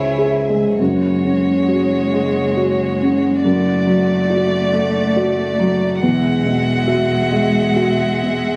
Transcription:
Already playing: C#2 G#2 G#3 E4 G#4 C#5 E5
0.18 G#4
0.49 G#3
0.78 F#1 F#2 G#3 F#4 C#5
1.24 C#3
1.68 F#4 C#5
2.13 G#3
2.57 F#4 C#5
3.01 C#3
3.43 F#2 A3 D5
3.87 F#3
4.30 F#4 D5
4.73 A3
5.16 F#4 D5
5.59 F#3
6.02 E1 E2 G#3 F#4 E5 F#5
6.45 B2
6.87 F#4 E5
7.31 G#3
7.76 F#4 E5
8.22 B2

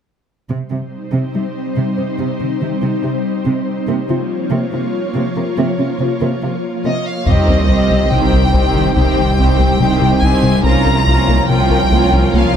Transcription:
0.50 C3 G3 C4 D#4 C5
0.71 C3 G3
1.12 C3
1.34 C3 G3
1.76 C3
1.97 C3 C4
2.18 C3
2.40 C3 D#3
2.61 C3 D#3
2.82 C3
3.03 C3 G3
3.45 C3
3.88 C3 F3 A#3 F4 C#5
4.09 C3 F4
4.51 C3 A#3
4.72 C3 F4
5.15 C3 A#3
5.36 C3 A#4
5.58 C3 A#3
5.79 C3 C#4
6.00 C3 C#4
6.21 C3 A#3
6.42 C3 F4
6.84 C3 A#3 D#5
7.07 F5
7.26 C2 C3 D#3 G3 C4 D#4 G4 C5 D#5, taiko, sub drop
7.48 C2 C4
7.68 C2 D#3 C4 G4 C5
7.90 C2 C3
8.11 C2 C3 D#3 C4 G4 C5 G5
8.33 C2 C4
8.53 C2 C3 D#3 C4 G4 C5, taiko
8.74 C2 D#3
8.95 C2 C3 D#3 C4 G4 C5 G5
9.17 C2 D#3
9.38 C2 D#3 C4 G4 C5
9.59 C2 C3
9.80 C2 C3 D#3 G3 C4 G4 C5
10.01 C3 G3
10.22 C2 C3 D#3 C4 G4 C5 G#5
10.43 C3 G3
10.64 C2 F3 A#3 C#4 F4 A#4 C#5 A#5
10.86 C2 A#4
11.07 C2 F3 C#4 F4 A#4
11.28 C2 A#3
11.49 C2 C3 F3 C#4 F4 A#4 G5
11.70 C2 A#4
11.92 C2 F3 A#3 C#4 F4 A#4
12.12 C2 C#4
12.33 C2 F3 A#3 C#4 F4 A#4 F5

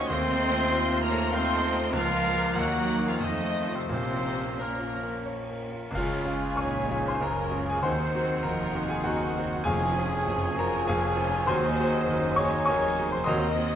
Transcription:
Already playing: D#2 D#3 F#3 D#4 F#4 C5 C#5 D#5
0.06 D#2 F3 A3 C4 F4 C5 D#5 C6
0.31 D#3
0.39 A3
0.51 A3
0.70 C4 F4
0.91 C5
1.01 A#3 A#4 A#5
1.05 C#5
1.12 A4
1.31 C4 D#4 C5 F5 C6
1.37 D#5
1.53 A4
1.65 A3
1.72 C5
1.93 C#2 F3 A#3 F4 A#4 F5
2.15 A#3
2.34 F4 A#4
2.55 D#2 F#3 A#3 D#4 A#4 F#5
2.59 D#3 F#4
2.76 A#3
2.98 D#4 A#4
3.06 F3 F4 G#4 F5
3.20 F2 D#3 F3 A3 C4 A4 D#5
3.26 D#4
3.43 A3
3.66 C4 F4
3.72 C3 C4 D#4 C5
3.89 A#1 A#2 C3 A#3 C#4 D#4 C5
3.93 C4
4.13 F3
4.37 A#3
4.58 A#2 C#4 A#4
4.63 A#3
4.79 F4
5.03 A#4
5.26 C#5
5.50 A#4
5.72 F4
5.91 C#2 C#3 C#4 F4 G#4
5.95 C#3 G#3 F4 C#5 F5 G#5, concert bass drum, crash
6.24 G#3 C#4 F4
6.56 A#1 C#2 A#2 C#3 D#4 C#5 G#5 C#6
6.89 G#3 C#4 F4
7.05 C5 C6
7.20 F#1 C#2 F#2 C#3 C#4 A#4 A#5
7.51 G#3 C#4 F4
7.68 G#4 G#5
7.83 D#2 D#3 F#3 C4 D#4 G#4 C5 F#5 C6
8.14 F#3 C4 F#4
8.43 F1 D#2 F2 D#3 D#4 F4 A#4 A#5
8.74 F#3 C4 F#4
8.87 G#4 G#5
9.02 F#1 D#2 F#2 D#3 D#4 F#4 D#5 F#5
9.36 F#3 C4 F#4
9.64 F1 F2 F3 G#3 C#4 F4 G#4 A#4 C#5 F5 G#5
9.95 F3 C#4 G#4
10.26 F1 F#1 F2 F#2 C#4 F4
10.57 F3 C#4 F#4 G#4 A#4 A#5
10.85 F1 F2 C#4 G#4 C#5 F5 G#5
10.89 F1 F2 G#4
11.16 F3 C#4 F4 G#4
11.46 D#2 D#3 F#3 G#3 D#4 F#4 C5 D#5 G#5 C6
11.78 F#3 D#4 G#4
12.07 F#1 D#2 F#2 D#3 D#4 G#4 C5
12.36 F#3 D#4 G#4 C#5 C#6
12.65 F1 F2 D#3 C#5 G#5 C#6
12.70 D#2
12.98 F#3 D#4 G#4
13.12 C5 C6
13.24 D#2 D#3 A#3 C4 F#4 C5 D#5 A#5 C6 D#6
13.29 D#2 F#3
13.55 F#3 C4 A#4

